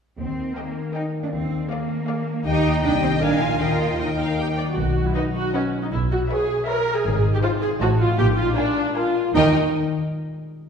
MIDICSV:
0, 0, Header, 1, 7, 480
1, 0, Start_track
1, 0, Key_signature, -3, "major"
1, 0, Tempo, 381679
1, 229, Time_signature, 3, 2, 24, 8
1, 8874, Key_signature, -3, "major"
1, 13448, End_track
2, 0, Start_track
2, 0, Title_t, "Violin section"
2, 0, Program_c, 0, 48
2, 700, Note_on_c, 0, 79, 40
2, 1062, Note_off_c, 0, 79, 0
2, 1200, Note_on_c, 0, 79, 39
2, 1552, Note_off_c, 0, 79, 0
2, 2140, Note_on_c, 0, 77, 46
2, 2492, Note_off_c, 0, 77, 0
2, 2616, Note_on_c, 0, 77, 50
2, 2969, Note_off_c, 0, 77, 0
2, 3096, Note_on_c, 0, 79, 51
2, 3537, Note_off_c, 0, 79, 0
2, 3573, Note_on_c, 0, 79, 52
2, 4038, Note_off_c, 0, 79, 0
2, 4052, Note_on_c, 0, 80, 51
2, 4525, Note_on_c, 0, 79, 42
2, 4536, Note_off_c, 0, 80, 0
2, 5023, Note_off_c, 0, 79, 0
2, 5038, Note_on_c, 0, 79, 35
2, 5752, Note_off_c, 0, 79, 0
2, 6501, Note_on_c, 0, 78, 48
2, 6851, Note_off_c, 0, 78, 0
2, 6965, Note_on_c, 0, 78, 53
2, 7321, Note_off_c, 0, 78, 0
2, 7912, Note_on_c, 0, 76, 51
2, 8272, Note_off_c, 0, 76, 0
2, 8378, Note_on_c, 0, 76, 56
2, 8741, Note_off_c, 0, 76, 0
2, 9360, Note_on_c, 0, 77, 60
2, 9707, Note_off_c, 0, 77, 0
2, 9833, Note_on_c, 0, 81, 65
2, 10181, Note_off_c, 0, 81, 0
2, 10797, Note_on_c, 0, 80, 56
2, 11144, Note_off_c, 0, 80, 0
2, 11273, Note_on_c, 0, 80, 50
2, 11631, Note_off_c, 0, 80, 0
2, 11758, Note_on_c, 0, 79, 51
2, 12020, Note_off_c, 0, 79, 0
2, 13448, End_track
3, 0, Start_track
3, 0, Title_t, "Violin section"
3, 0, Program_c, 1, 48
3, 711, Note_on_c, 1, 75, 36
3, 1067, Note_off_c, 1, 75, 0
3, 1188, Note_on_c, 1, 75, 36
3, 1546, Note_off_c, 1, 75, 0
3, 2147, Note_on_c, 1, 74, 48
3, 2495, Note_off_c, 1, 74, 0
3, 2617, Note_on_c, 1, 74, 48
3, 2969, Note_off_c, 1, 74, 0
3, 3089, Note_on_c, 1, 75, 50
3, 3533, Note_off_c, 1, 75, 0
3, 3562, Note_on_c, 1, 75, 52
3, 4032, Note_off_c, 1, 75, 0
3, 4052, Note_on_c, 1, 77, 48
3, 4535, Note_on_c, 1, 75, 41
3, 4536, Note_off_c, 1, 77, 0
3, 5009, Note_off_c, 1, 75, 0
3, 5024, Note_on_c, 1, 75, 45
3, 5123, Note_off_c, 1, 75, 0
3, 5264, Note_on_c, 1, 77, 38
3, 5507, Note_off_c, 1, 77, 0
3, 5515, Note_on_c, 1, 79, 43
3, 5613, Note_off_c, 1, 79, 0
3, 5745, Note_on_c, 1, 74, 34
3, 5845, Note_off_c, 1, 74, 0
3, 6486, Note_on_c, 1, 71, 49
3, 6489, Note_on_c, 1, 75, 51
3, 6843, Note_off_c, 1, 71, 0
3, 6844, Note_off_c, 1, 75, 0
3, 6964, Note_on_c, 1, 71, 51
3, 6967, Note_on_c, 1, 75, 47
3, 7321, Note_off_c, 1, 71, 0
3, 7322, Note_off_c, 1, 75, 0
3, 7920, Note_on_c, 1, 71, 51
3, 7928, Note_on_c, 1, 73, 55
3, 8276, Note_off_c, 1, 71, 0
3, 8280, Note_off_c, 1, 73, 0
3, 8404, Note_on_c, 1, 71, 51
3, 8408, Note_on_c, 1, 73, 52
3, 8755, Note_off_c, 1, 71, 0
3, 8757, Note_off_c, 1, 73, 0
3, 9348, Note_on_c, 1, 72, 63
3, 9350, Note_off_c, 1, 72, 0
3, 9350, Note_on_c, 1, 72, 62
3, 9702, Note_off_c, 1, 72, 0
3, 9818, Note_on_c, 1, 75, 59
3, 9823, Note_on_c, 1, 72, 59
3, 10173, Note_off_c, 1, 75, 0
3, 10176, Note_off_c, 1, 72, 0
3, 10767, Note_on_c, 1, 77, 57
3, 10768, Note_on_c, 1, 70, 59
3, 11128, Note_off_c, 1, 77, 0
3, 11129, Note_off_c, 1, 70, 0
3, 11257, Note_on_c, 1, 77, 47
3, 11258, Note_on_c, 1, 70, 52
3, 11623, Note_off_c, 1, 70, 0
3, 11623, Note_off_c, 1, 77, 0
3, 11763, Note_on_c, 1, 70, 52
3, 11765, Note_on_c, 1, 75, 53
3, 12023, Note_off_c, 1, 70, 0
3, 12024, Note_off_c, 1, 75, 0
3, 13448, End_track
4, 0, Start_track
4, 0, Title_t, "Viola section"
4, 0, Program_c, 2, 48
4, 707, Note_on_c, 2, 70, 38
4, 1066, Note_off_c, 2, 70, 0
4, 1192, Note_on_c, 2, 70, 37
4, 1548, Note_off_c, 2, 70, 0
4, 2139, Note_on_c, 2, 68, 45
4, 2491, Note_off_c, 2, 68, 0
4, 2618, Note_on_c, 2, 68, 49
4, 2970, Note_off_c, 2, 68, 0
4, 3094, Note_on_c, 2, 67, 55
4, 3536, Note_off_c, 2, 67, 0
4, 3568, Note_on_c, 2, 67, 53
4, 4035, Note_off_c, 2, 67, 0
4, 4052, Note_on_c, 2, 70, 52
4, 4508, Note_off_c, 2, 70, 0
4, 4523, Note_on_c, 2, 70, 42
4, 5004, Note_off_c, 2, 70, 0
4, 5019, Note_on_c, 2, 70, 35
4, 5503, Note_off_c, 2, 70, 0
4, 5516, Note_on_c, 2, 67, 48
4, 5616, Note_off_c, 2, 67, 0
4, 5895, Note_on_c, 2, 66, 50
4, 6364, Note_off_c, 2, 66, 0
4, 6388, Note_on_c, 2, 64, 61
4, 6484, Note_on_c, 2, 63, 63
4, 6498, Note_off_c, 2, 64, 0
4, 6581, Note_off_c, 2, 63, 0
4, 6729, Note_on_c, 2, 66, 65
4, 6962, Note_off_c, 2, 66, 0
4, 6965, Note_on_c, 2, 61, 63
4, 7065, Note_off_c, 2, 61, 0
4, 7332, Note_on_c, 2, 63, 50
4, 7378, Note_off_c, 2, 63, 0
4, 7441, Note_on_c, 2, 64, 71
4, 7538, Note_off_c, 2, 64, 0
4, 7691, Note_on_c, 2, 66, 67
4, 7785, Note_off_c, 2, 66, 0
4, 7920, Note_on_c, 2, 68, 72
4, 8388, Note_off_c, 2, 68, 0
4, 8394, Note_on_c, 2, 70, 77
4, 8745, Note_off_c, 2, 70, 0
4, 8757, Note_on_c, 2, 68, 65
4, 9229, Note_off_c, 2, 68, 0
4, 9232, Note_on_c, 2, 67, 76
4, 9279, Note_off_c, 2, 67, 0
4, 9347, Note_on_c, 2, 65, 80
4, 9442, Note_off_c, 2, 65, 0
4, 9582, Note_on_c, 2, 68, 85
4, 9678, Note_off_c, 2, 68, 0
4, 9833, Note_on_c, 2, 66, 80
4, 9925, Note_off_c, 2, 66, 0
4, 10064, Note_on_c, 2, 65, 74
4, 10295, Note_off_c, 2, 65, 0
4, 10300, Note_on_c, 2, 67, 91
4, 10394, Note_off_c, 2, 67, 0
4, 10540, Note_on_c, 2, 65, 81
4, 10770, Note_off_c, 2, 65, 0
4, 10774, Note_on_c, 2, 62, 76
4, 11247, Note_off_c, 2, 62, 0
4, 11263, Note_on_c, 2, 65, 63
4, 11740, Note_off_c, 2, 65, 0
4, 11753, Note_on_c, 2, 63, 70
4, 12017, Note_off_c, 2, 63, 0
4, 13448, End_track
5, 0, Start_track
5, 0, Title_t, "Harp"
5, 0, Program_c, 3, 46
5, 226, Note_on_c, 3, 51, 39
5, 483, Note_on_c, 3, 63, 29
5, 723, Note_on_c, 3, 67, 29
5, 959, Note_on_c, 3, 70, 33
5, 1194, Note_off_c, 3, 63, 0
5, 1209, Note_on_c, 3, 63, 31
5, 1437, Note_on_c, 3, 58, 31
5, 1654, Note_off_c, 3, 51, 0
5, 1669, Note_on_c, 3, 51, 39
5, 1695, Note_off_c, 3, 67, 0
5, 1698, Note_off_c, 3, 63, 0
5, 1917, Note_on_c, 3, 62, 33
5, 2147, Note_on_c, 3, 68, 37
5, 2365, Note_off_c, 3, 70, 0
5, 2380, Note_on_c, 3, 70, 41
5, 2602, Note_off_c, 3, 62, 0
5, 2617, Note_on_c, 3, 62, 40
5, 2848, Note_off_c, 3, 58, 0
5, 2863, Note_on_c, 3, 58, 41
5, 3084, Note_off_c, 3, 51, 0
5, 3099, Note_on_c, 3, 51, 57
5, 3110, Note_off_c, 3, 62, 0
5, 3111, Note_off_c, 3, 68, 0
5, 3337, Note_on_c, 3, 63, 41
5, 3345, Note_on_c, 3, 67, 42
5, 3568, Note_on_c, 3, 48, 56
5, 3587, Note_off_c, 3, 70, 0
5, 3591, Note_off_c, 3, 51, 0
5, 3592, Note_off_c, 3, 58, 0
5, 3796, Note_off_c, 3, 63, 0
5, 3799, Note_off_c, 3, 67, 0
5, 3809, Note_on_c, 3, 63, 42
5, 3816, Note_on_c, 3, 67, 43
5, 4049, Note_on_c, 3, 46, 53
5, 4064, Note_off_c, 3, 48, 0
5, 4066, Note_off_c, 3, 63, 0
5, 4068, Note_off_c, 3, 67, 0
5, 4282, Note_on_c, 3, 65, 37
5, 4292, Note_on_c, 3, 70, 41
5, 4526, Note_on_c, 3, 51, 43
5, 4549, Note_off_c, 3, 65, 0
5, 4554, Note_off_c, 3, 46, 0
5, 4774, Note_on_c, 3, 63, 33
5, 5014, Note_off_c, 3, 70, 0
5, 5029, Note_on_c, 3, 70, 31
5, 5279, Note_on_c, 3, 67, 32
5, 5514, Note_off_c, 3, 63, 0
5, 5529, Note_on_c, 3, 63, 28
5, 5775, Note_on_c, 3, 55, 29
5, 6009, Note_on_c, 3, 47, 50
5, 6022, Note_off_c, 3, 51, 0
5, 6026, Note_off_c, 3, 70, 0
5, 6028, Note_off_c, 3, 67, 0
5, 6031, Note_off_c, 3, 55, 0
5, 6257, Note_on_c, 3, 54, 40
5, 6487, Note_off_c, 3, 63, 0
5, 6738, Note_on_c, 3, 71, 41
5, 6983, Note_on_c, 3, 66, 44
5, 7185, Note_off_c, 3, 71, 0
5, 7200, Note_on_c, 3, 71, 43
5, 7422, Note_off_c, 3, 47, 0
5, 7437, Note_on_c, 3, 47, 49
5, 7469, Note_off_c, 3, 54, 0
5, 7472, Note_off_c, 3, 66, 0
5, 7678, Note_on_c, 3, 61, 42
5, 7927, Note_on_c, 3, 64, 41
5, 8153, Note_on_c, 3, 68, 46
5, 8401, Note_on_c, 3, 73, 45
5, 8627, Note_off_c, 3, 68, 0
5, 8642, Note_on_c, 3, 68, 49
5, 8883, Note_on_c, 3, 44, 58
5, 8888, Note_off_c, 3, 47, 0
5, 8889, Note_off_c, 3, 61, 0
5, 8889, Note_off_c, 3, 71, 0
5, 8893, Note_off_c, 3, 73, 0
5, 8894, Note_off_c, 3, 64, 0
5, 9116, Note_on_c, 3, 60, 46
5, 9344, Note_on_c, 3, 65, 51
5, 9582, Note_off_c, 3, 68, 0
5, 9597, Note_on_c, 3, 68, 51
5, 9834, Note_on_c, 3, 45, 62
5, 9839, Note_off_c, 3, 65, 0
5, 9846, Note_off_c, 3, 44, 0
5, 9847, Note_off_c, 3, 68, 0
5, 10070, Note_on_c, 3, 63, 48
5, 10076, Note_on_c, 3, 72, 52
5, 10305, Note_on_c, 3, 46, 60
5, 10319, Note_off_c, 3, 60, 0
5, 10321, Note_off_c, 3, 63, 0
5, 10322, Note_off_c, 3, 45, 0
5, 10324, Note_off_c, 3, 72, 0
5, 10556, Note_on_c, 3, 56, 47
5, 10793, Note_on_c, 3, 65, 47
5, 11033, Note_on_c, 3, 70, 47
5, 11268, Note_on_c, 3, 68, 42
5, 11501, Note_off_c, 3, 70, 0
5, 11516, Note_on_c, 3, 70, 40
5, 11702, Note_on_c, 3, 55, 50
5, 11737, Note_on_c, 3, 63, 51
5, 11741, Note_off_c, 3, 70, 0
5, 11750, Note_on_c, 3, 51, 49
5, 11769, Note_off_c, 3, 46, 0
5, 11771, Note_off_c, 3, 68, 0
5, 11774, Note_on_c, 3, 70, 50
5, 11776, Note_off_c, 3, 56, 0
5, 11776, Note_off_c, 3, 65, 0
5, 11810, Note_on_c, 3, 75, 48
5, 12016, Note_off_c, 3, 51, 0
5, 12019, Note_off_c, 3, 55, 0
5, 12019, Note_off_c, 3, 63, 0
5, 12019, Note_off_c, 3, 70, 0
5, 12019, Note_off_c, 3, 75, 0
5, 13448, End_track
6, 0, Start_track
6, 0, Title_t, "Cello section"
6, 0, Program_c, 4, 48
6, 239, Note_on_c, 4, 60, 52
6, 682, Note_off_c, 4, 60, 0
6, 712, Note_on_c, 4, 58, 45
6, 1191, Note_off_c, 4, 58, 0
6, 1195, Note_on_c, 4, 63, 52
6, 1295, Note_off_c, 4, 63, 0
6, 1556, Note_on_c, 4, 62, 51
6, 1603, Note_off_c, 4, 62, 0
6, 1677, Note_on_c, 4, 60, 58
6, 2137, Note_off_c, 4, 60, 0
6, 2156, Note_on_c, 4, 58, 61
6, 3077, Note_off_c, 4, 58, 0
6, 3101, Note_on_c, 4, 63, 77
6, 3563, Note_off_c, 4, 63, 0
6, 3573, Note_on_c, 4, 62, 82
6, 3667, Note_off_c, 4, 62, 0
6, 3803, Note_on_c, 4, 60, 68
6, 3899, Note_off_c, 4, 60, 0
6, 4045, Note_on_c, 4, 62, 71
6, 4282, Note_off_c, 4, 62, 0
6, 4296, Note_on_c, 4, 65, 65
6, 4513, Note_off_c, 4, 65, 0
6, 4528, Note_on_c, 4, 65, 65
6, 5014, Note_off_c, 4, 65, 0
6, 5040, Note_on_c, 4, 63, 50
6, 5768, Note_off_c, 4, 63, 0
6, 6011, Note_on_c, 4, 47, 62
6, 6390, Note_off_c, 4, 47, 0
6, 7449, Note_on_c, 4, 47, 61
6, 7825, Note_off_c, 4, 47, 0
6, 8876, Note_on_c, 4, 44, 71
6, 9249, Note_off_c, 4, 44, 0
6, 9831, Note_on_c, 4, 45, 65
6, 10202, Note_off_c, 4, 45, 0
6, 10301, Note_on_c, 4, 46, 77
6, 10675, Note_off_c, 4, 46, 0
6, 11758, Note_on_c, 4, 51, 60
6, 12020, Note_off_c, 4, 51, 0
6, 13448, End_track
7, 0, Start_track
7, 0, Title_t, "Double bass section"
7, 0, Program_c, 5, 48
7, 234, Note_on_c, 5, 39, 46
7, 613, Note_off_c, 5, 39, 0
7, 1680, Note_on_c, 5, 39, 52
7, 2050, Note_off_c, 5, 39, 0
7, 3080, Note_on_c, 5, 39, 57
7, 3529, Note_off_c, 5, 39, 0
7, 3569, Note_on_c, 5, 36, 55
7, 4035, Note_on_c, 5, 34, 52
7, 4045, Note_off_c, 5, 36, 0
7, 4527, Note_off_c, 5, 34, 0
7, 4528, Note_on_c, 5, 39, 45
7, 5759, Note_off_c, 5, 39, 0
7, 5997, Note_on_c, 5, 35, 63
7, 6383, Note_off_c, 5, 35, 0
7, 7442, Note_on_c, 5, 35, 62
7, 7822, Note_off_c, 5, 35, 0
7, 8866, Note_on_c, 5, 32, 73
7, 9244, Note_off_c, 5, 32, 0
7, 9822, Note_on_c, 5, 33, 68
7, 10197, Note_off_c, 5, 33, 0
7, 10291, Note_on_c, 5, 34, 78
7, 10670, Note_off_c, 5, 34, 0
7, 11742, Note_on_c, 5, 39, 62
7, 12012, Note_off_c, 5, 39, 0
7, 13448, End_track
0, 0, End_of_file